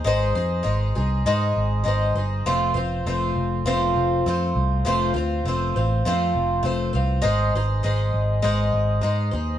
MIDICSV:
0, 0, Header, 1, 3, 480
1, 0, Start_track
1, 0, Tempo, 599401
1, 43, Time_signature, 4, 2, 24, 8
1, 7676, End_track
2, 0, Start_track
2, 0, Title_t, "Twelve-string acoustic guitar"
2, 0, Program_c, 0, 25
2, 35, Note_on_c, 0, 56, 95
2, 45, Note_on_c, 0, 63, 95
2, 54, Note_on_c, 0, 68, 98
2, 55, Note_on_c, 0, 72, 112
2, 273, Note_off_c, 0, 72, 0
2, 280, Note_off_c, 0, 56, 0
2, 282, Note_on_c, 0, 72, 67
2, 285, Note_off_c, 0, 63, 0
2, 289, Note_off_c, 0, 68, 0
2, 299, Note_on_c, 0, 68, 58
2, 302, Note_on_c, 0, 63, 51
2, 501, Note_off_c, 0, 63, 0
2, 503, Note_on_c, 0, 56, 70
2, 504, Note_off_c, 0, 68, 0
2, 510, Note_on_c, 0, 63, 70
2, 514, Note_on_c, 0, 68, 75
2, 518, Note_off_c, 0, 72, 0
2, 527, Note_on_c, 0, 72, 74
2, 753, Note_off_c, 0, 72, 0
2, 754, Note_off_c, 0, 56, 0
2, 757, Note_off_c, 0, 63, 0
2, 759, Note_off_c, 0, 68, 0
2, 763, Note_on_c, 0, 72, 60
2, 769, Note_on_c, 0, 68, 53
2, 782, Note_on_c, 0, 63, 51
2, 1003, Note_off_c, 0, 63, 0
2, 1004, Note_off_c, 0, 72, 0
2, 1007, Note_off_c, 0, 68, 0
2, 1009, Note_on_c, 0, 56, 97
2, 1012, Note_on_c, 0, 63, 96
2, 1017, Note_on_c, 0, 72, 110
2, 1019, Note_on_c, 0, 68, 92
2, 1461, Note_off_c, 0, 56, 0
2, 1470, Note_off_c, 0, 63, 0
2, 1470, Note_on_c, 0, 56, 69
2, 1478, Note_off_c, 0, 68, 0
2, 1480, Note_on_c, 0, 63, 76
2, 1487, Note_on_c, 0, 68, 75
2, 1499, Note_off_c, 0, 72, 0
2, 1503, Note_on_c, 0, 72, 83
2, 1716, Note_off_c, 0, 72, 0
2, 1718, Note_off_c, 0, 56, 0
2, 1722, Note_off_c, 0, 63, 0
2, 1726, Note_off_c, 0, 68, 0
2, 1726, Note_on_c, 0, 72, 53
2, 1737, Note_on_c, 0, 68, 47
2, 1748, Note_on_c, 0, 63, 47
2, 1965, Note_off_c, 0, 72, 0
2, 1970, Note_on_c, 0, 53, 94
2, 1970, Note_on_c, 0, 57, 93
2, 1971, Note_off_c, 0, 63, 0
2, 1971, Note_off_c, 0, 68, 0
2, 1975, Note_on_c, 0, 60, 100
2, 1978, Note_on_c, 0, 65, 100
2, 1984, Note_on_c, 0, 72, 92
2, 2185, Note_off_c, 0, 72, 0
2, 2195, Note_on_c, 0, 72, 64
2, 2204, Note_off_c, 0, 65, 0
2, 2208, Note_off_c, 0, 53, 0
2, 2208, Note_off_c, 0, 57, 0
2, 2210, Note_off_c, 0, 60, 0
2, 2214, Note_on_c, 0, 65, 54
2, 2221, Note_on_c, 0, 60, 52
2, 2440, Note_off_c, 0, 72, 0
2, 2448, Note_off_c, 0, 60, 0
2, 2450, Note_off_c, 0, 65, 0
2, 2454, Note_on_c, 0, 57, 66
2, 2457, Note_on_c, 0, 60, 75
2, 2466, Note_on_c, 0, 65, 78
2, 2475, Note_on_c, 0, 72, 73
2, 2926, Note_off_c, 0, 57, 0
2, 2928, Note_on_c, 0, 53, 98
2, 2932, Note_off_c, 0, 65, 0
2, 2935, Note_off_c, 0, 60, 0
2, 2936, Note_on_c, 0, 57, 93
2, 2938, Note_on_c, 0, 60, 93
2, 2939, Note_off_c, 0, 72, 0
2, 2941, Note_on_c, 0, 65, 92
2, 2943, Note_on_c, 0, 72, 102
2, 3403, Note_off_c, 0, 57, 0
2, 3407, Note_off_c, 0, 53, 0
2, 3413, Note_off_c, 0, 65, 0
2, 3413, Note_on_c, 0, 57, 69
2, 3420, Note_off_c, 0, 60, 0
2, 3423, Note_on_c, 0, 60, 80
2, 3429, Note_on_c, 0, 65, 76
2, 3430, Note_off_c, 0, 72, 0
2, 3433, Note_on_c, 0, 72, 83
2, 3882, Note_off_c, 0, 57, 0
2, 3882, Note_on_c, 0, 53, 91
2, 3890, Note_off_c, 0, 65, 0
2, 3892, Note_off_c, 0, 60, 0
2, 3892, Note_on_c, 0, 57, 95
2, 3895, Note_on_c, 0, 60, 103
2, 3899, Note_on_c, 0, 65, 100
2, 3907, Note_off_c, 0, 72, 0
2, 3910, Note_on_c, 0, 72, 108
2, 4105, Note_off_c, 0, 72, 0
2, 4114, Note_on_c, 0, 72, 59
2, 4124, Note_off_c, 0, 53, 0
2, 4124, Note_off_c, 0, 65, 0
2, 4129, Note_off_c, 0, 57, 0
2, 4130, Note_off_c, 0, 60, 0
2, 4134, Note_on_c, 0, 65, 62
2, 4148, Note_on_c, 0, 60, 51
2, 4360, Note_off_c, 0, 72, 0
2, 4367, Note_on_c, 0, 57, 69
2, 4369, Note_off_c, 0, 65, 0
2, 4376, Note_off_c, 0, 60, 0
2, 4385, Note_on_c, 0, 60, 77
2, 4389, Note_on_c, 0, 65, 69
2, 4394, Note_on_c, 0, 72, 77
2, 4603, Note_off_c, 0, 72, 0
2, 4606, Note_off_c, 0, 57, 0
2, 4612, Note_off_c, 0, 65, 0
2, 4612, Note_on_c, 0, 72, 61
2, 4615, Note_off_c, 0, 60, 0
2, 4621, Note_on_c, 0, 65, 56
2, 4634, Note_on_c, 0, 60, 47
2, 4847, Note_on_c, 0, 53, 92
2, 4849, Note_off_c, 0, 72, 0
2, 4851, Note_off_c, 0, 60, 0
2, 4853, Note_off_c, 0, 65, 0
2, 4853, Note_on_c, 0, 57, 100
2, 4861, Note_on_c, 0, 60, 98
2, 4864, Note_on_c, 0, 65, 101
2, 4866, Note_on_c, 0, 72, 95
2, 5298, Note_off_c, 0, 57, 0
2, 5307, Note_on_c, 0, 57, 75
2, 5321, Note_off_c, 0, 60, 0
2, 5324, Note_off_c, 0, 65, 0
2, 5324, Note_on_c, 0, 60, 70
2, 5325, Note_off_c, 0, 53, 0
2, 5330, Note_off_c, 0, 72, 0
2, 5333, Note_on_c, 0, 65, 73
2, 5333, Note_on_c, 0, 72, 81
2, 5540, Note_off_c, 0, 72, 0
2, 5550, Note_on_c, 0, 72, 57
2, 5555, Note_off_c, 0, 57, 0
2, 5555, Note_off_c, 0, 65, 0
2, 5564, Note_off_c, 0, 60, 0
2, 5564, Note_on_c, 0, 65, 54
2, 5576, Note_on_c, 0, 60, 49
2, 5778, Note_off_c, 0, 60, 0
2, 5778, Note_on_c, 0, 56, 102
2, 5781, Note_on_c, 0, 63, 108
2, 5782, Note_off_c, 0, 65, 0
2, 5785, Note_off_c, 0, 72, 0
2, 5785, Note_on_c, 0, 68, 100
2, 5794, Note_on_c, 0, 72, 108
2, 6030, Note_off_c, 0, 56, 0
2, 6032, Note_off_c, 0, 63, 0
2, 6034, Note_off_c, 0, 68, 0
2, 6039, Note_off_c, 0, 72, 0
2, 6049, Note_on_c, 0, 72, 63
2, 6058, Note_on_c, 0, 68, 61
2, 6059, Note_on_c, 0, 63, 54
2, 6266, Note_off_c, 0, 63, 0
2, 6270, Note_off_c, 0, 68, 0
2, 6270, Note_on_c, 0, 56, 64
2, 6276, Note_on_c, 0, 63, 75
2, 6279, Note_on_c, 0, 68, 78
2, 6282, Note_off_c, 0, 72, 0
2, 6291, Note_on_c, 0, 72, 78
2, 6735, Note_off_c, 0, 63, 0
2, 6737, Note_off_c, 0, 56, 0
2, 6745, Note_on_c, 0, 63, 102
2, 6746, Note_on_c, 0, 56, 96
2, 6749, Note_off_c, 0, 68, 0
2, 6754, Note_off_c, 0, 72, 0
2, 6757, Note_on_c, 0, 72, 99
2, 6759, Note_on_c, 0, 68, 99
2, 7208, Note_off_c, 0, 56, 0
2, 7218, Note_on_c, 0, 56, 71
2, 7219, Note_off_c, 0, 63, 0
2, 7224, Note_off_c, 0, 68, 0
2, 7229, Note_on_c, 0, 63, 73
2, 7233, Note_on_c, 0, 68, 82
2, 7238, Note_off_c, 0, 72, 0
2, 7241, Note_on_c, 0, 72, 83
2, 7448, Note_off_c, 0, 72, 0
2, 7458, Note_on_c, 0, 72, 52
2, 7463, Note_off_c, 0, 68, 0
2, 7469, Note_off_c, 0, 56, 0
2, 7473, Note_off_c, 0, 63, 0
2, 7473, Note_on_c, 0, 68, 55
2, 7482, Note_on_c, 0, 63, 43
2, 7676, Note_off_c, 0, 63, 0
2, 7676, Note_off_c, 0, 68, 0
2, 7676, Note_off_c, 0, 72, 0
2, 7676, End_track
3, 0, Start_track
3, 0, Title_t, "Picked electric bass"
3, 0, Program_c, 1, 34
3, 42, Note_on_c, 1, 32, 92
3, 251, Note_off_c, 1, 32, 0
3, 284, Note_on_c, 1, 41, 98
3, 492, Note_off_c, 1, 41, 0
3, 523, Note_on_c, 1, 32, 91
3, 732, Note_off_c, 1, 32, 0
3, 773, Note_on_c, 1, 36, 95
3, 978, Note_off_c, 1, 36, 0
3, 1008, Note_on_c, 1, 44, 102
3, 1215, Note_off_c, 1, 44, 0
3, 1255, Note_on_c, 1, 32, 90
3, 1459, Note_off_c, 1, 32, 0
3, 1488, Note_on_c, 1, 32, 91
3, 1695, Note_off_c, 1, 32, 0
3, 1726, Note_on_c, 1, 31, 98
3, 1934, Note_off_c, 1, 31, 0
3, 1971, Note_on_c, 1, 29, 95
3, 2177, Note_off_c, 1, 29, 0
3, 2205, Note_on_c, 1, 29, 96
3, 2414, Note_off_c, 1, 29, 0
3, 2449, Note_on_c, 1, 29, 93
3, 2656, Note_off_c, 1, 29, 0
3, 2690, Note_on_c, 1, 29, 92
3, 2896, Note_off_c, 1, 29, 0
3, 2926, Note_on_c, 1, 29, 99
3, 3134, Note_off_c, 1, 29, 0
3, 3167, Note_on_c, 1, 29, 93
3, 3375, Note_off_c, 1, 29, 0
3, 3415, Note_on_c, 1, 41, 90
3, 3619, Note_off_c, 1, 41, 0
3, 3647, Note_on_c, 1, 36, 93
3, 3855, Note_off_c, 1, 36, 0
3, 4122, Note_on_c, 1, 38, 98
3, 4332, Note_off_c, 1, 38, 0
3, 4362, Note_on_c, 1, 29, 99
3, 4572, Note_off_c, 1, 29, 0
3, 4612, Note_on_c, 1, 33, 98
3, 4817, Note_off_c, 1, 33, 0
3, 4853, Note_on_c, 1, 41, 99
3, 5058, Note_off_c, 1, 41, 0
3, 5085, Note_on_c, 1, 29, 96
3, 5293, Note_off_c, 1, 29, 0
3, 5318, Note_on_c, 1, 29, 96
3, 5529, Note_off_c, 1, 29, 0
3, 5560, Note_on_c, 1, 36, 103
3, 5770, Note_off_c, 1, 36, 0
3, 5797, Note_on_c, 1, 32, 101
3, 6008, Note_off_c, 1, 32, 0
3, 6042, Note_on_c, 1, 32, 96
3, 6251, Note_off_c, 1, 32, 0
3, 6282, Note_on_c, 1, 32, 99
3, 6490, Note_off_c, 1, 32, 0
3, 6520, Note_on_c, 1, 32, 100
3, 6729, Note_off_c, 1, 32, 0
3, 6759, Note_on_c, 1, 32, 102
3, 6968, Note_off_c, 1, 32, 0
3, 6995, Note_on_c, 1, 32, 93
3, 7206, Note_off_c, 1, 32, 0
3, 7236, Note_on_c, 1, 44, 88
3, 7447, Note_off_c, 1, 44, 0
3, 7475, Note_on_c, 1, 39, 92
3, 7676, Note_off_c, 1, 39, 0
3, 7676, End_track
0, 0, End_of_file